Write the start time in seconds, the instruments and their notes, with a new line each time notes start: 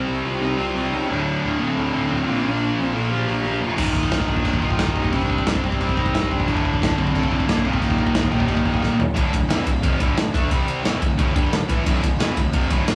Already playing: distorted electric guitar C3 G3 C4, lead electric guitar C4, string section D#4 G4 C5 G5
0.08 picked electric bass C2
0.24 picked electric bass C2, lead electric guitar F4
0.41 picked electric bass C2, distorted electric guitar C3 G3 C4, lead electric guitar D#4
0.58 picked electric bass C2, distorted electric guitar C3 G3 C4, lead electric guitar F4
0.74 picked electric bass C2, distorted electric guitar C3 G3 C4
0.91 picked electric bass C#2, distorted electric guitar C3 G3 C4, lead electric guitar D#4
1.07 picked electric bass D1, distorted electric guitar D2 A2 D3, string section D4 F4 A4 F5, lead electric guitar D4
1.44 picked electric bass D1
1.58 picked electric bass D1, lead electric guitar C4
1.76 picked electric bass D1, distorted electric guitar D2 A2 D3
1.91 picked electric bass D1, distorted electric guitar D2 A2 D3
2.08 picked electric bass D1, distorted electric guitar D2 A2 D3, lead electric guitar C4
2.24 distorted electric guitar A#2 F3, string section A#4
2.28 picked electric bass A#1, distorted electric guitar A#3
2.43 picked electric bass A#1, lead electric guitar D4
2.79 picked electric bass A#1
2.85 lead electric guitar C4
2.93 picked electric bass A#1, distorted electric guitar A#2 F3 A#3, lead electric guitar A4
3.09 picked electric bass A#1, distorted electric guitar A#2 F3 A#3, lead electric guitar G4
3.25 picked electric bass A#1, distorted electric guitar A#2 F3 A#3, lead electric guitar G4
3.44 picked electric bass A#1, distorted electric guitar A#2 F3 A#3
3.61 picked electric bass F1, lead electric guitar F4
3.76 picked electric bass D#1, distorted electric guitar D#2 A#2 D#3, string section D#3 G4 G5, lead electric guitar D#4, kick, crash, china
3.87 kick
3.95 kick
4.03 kick
4.11 picked electric bass D#1, kick, snare, china
4.20 kick
4.28 picked electric bass D#1, lead electric guitar D4, kick
4.37 kick
4.44 picked electric bass D#1, distorted electric guitar D#2 A#2 D#3, kick, china
4.53 kick
4.60 picked electric bass D#1, distorted electric guitar D#2 A#2 D#3, lead electric guitar F4, kick
4.70 kick
4.77 picked electric bass D#1, distorted electric guitar D#2 A#2 D#3, kick, snare, china
4.87 kick
4.95 picked electric bass D#1, distorted electric guitar D#2 A#2 D#3, lead electric guitar D#4, kick
5.04 kick
5.10 picked electric bass C2, distorted electric guitar C3 G3, lead electric guitar D4, string section C5 G5, kick, china
5.14 distorted electric guitar C4
5.21 kick
5.30 kick
5.38 kick
5.46 picked electric bass C2, kick, snare, china
5.55 kick
5.63 picked electric bass C2, lead electric guitar C4, kick
5.72 kick
5.79 picked electric bass C2, distorted electric guitar C3 G3 C4, kick, china
5.89 kick
5.95 picked electric bass C2, distorted electric guitar C3 G3 C4, lead electric guitar D#4, kick
6.06 kick
6.13 picked electric bass C2, distorted electric guitar C3 G3 C4, kick, snare, china
6.23 kick
6.29 picked electric bass D#1, distorted electric guitar C3 G3 C4, lead electric guitar D4, kick
6.40 kick
6.47 picked electric bass D1, distorted electric guitar D2 A2 D3, string section F4 A4 D5 A5, kick, china
6.57 kick
6.65 kick
6.73 kick
6.82 picked electric bass D1, kick, snare, china
6.90 kick
6.97 picked electric bass D1, lead electric guitar C4, kick
7.07 kick
7.13 picked electric bass D1, distorted electric guitar D2 A2 D3, kick, china
7.23 kick
7.30 picked electric bass D1, distorted electric guitar D2 A2 D3, kick
7.40 kick
7.47 picked electric bass F1, distorted electric guitar D2 A2 D3, lead electric guitar A#3, kick, snare, china
7.57 kick
7.64 picked electric bass D#1, distorted electric guitar D#2 A#2 D#3, lead electric guitar C4, string section G4 A#4 D#5 A#5, kick
7.73 kick
7.79 picked electric bass D#1, lead electric guitar A#3, kick, china
7.90 kick
7.98 kick
8.07 kick
8.15 picked electric bass D#1, kick, snare, china
8.23 kick
8.29 picked electric bass D#1, distorted electric guitar D#2 A#2 D#3, kick
8.40 kick
8.48 picked electric bass D#1, distorted electric guitar D#2 A#2 D#3, kick, china
8.57 kick
8.64 picked electric bass D#1, distorted electric guitar A#2 D#3, kick
8.68 distorted electric guitar D#2
8.74 kick
8.81 picked electric bass D#1, distorted electric guitar D#2 A#2 D#3, kick, snare
8.99 picked electric bass D#1, floor tom
9.14 picked electric bass D1, distorted electric guitar D2 A2 D3, string section D4 A4 D5 F5, kick, ride
9.32 picked electric bass D1, distorted electric guitar D2 A2, kick, ride
9.49 picked electric bass E1, distorted electric guitar E2 B2 E3, snare, ride
9.66 picked electric bass D1, distorted electric guitar D2 A2, kick, ride
9.82 picked electric bass F1, distorted electric guitar F2 C3 F3, kick, ride
9.99 picked electric bass D1, distorted electric guitar D2 A2 D3, kick, ride
10.16 picked electric bass D1, distorted electric guitar D2 A2, snare, ride
10.33 picked electric bass D2, distorted electric guitar D3 A3 D4, kick, ride
10.50 picked electric bass C2, string section C3 G3 D4 C5, distorted electric guitar C3 G3 C4, kick, ride
10.68 ride
10.84 picked electric bass E1, distorted electric guitar E2 B2 E3, string section D3 A3 F4, snare, ride
11.01 picked electric bass D1, distorted electric guitar D2 A2, kick, ride
11.18 picked electric bass D1, distorted electric guitar D2 A2 D3, kick, ride
11.35 picked electric bass G1, distorted electric guitar G2 D3 G3, kick, ride
11.52 picked electric bass D1, distorted electric guitar D2 A2, snare, ride
11.68 picked electric bass A1, distorted electric guitar A2 E3 A3, kick, ride
11.86 picked electric bass D1, distorted electric guitar D2 A2 D3, kick, ride
12.03 picked electric bass D1, distorted electric guitar D2 A2, kick, ride
12.19 picked electric bass E1, distorted electric guitar E2 B2 E3, snare, ride
12.37 picked electric bass D1, distorted electric guitar D2 A2, kick, ride
12.53 picked electric bass F1, distorted electric guitar F2 C3 F3, kick, ride
12.70 picked electric bass D1, distorted electric guitar D2 A2 D3, kick, ride
12.85 picked electric bass D1, distorted electric guitar D2 A2, snare, ride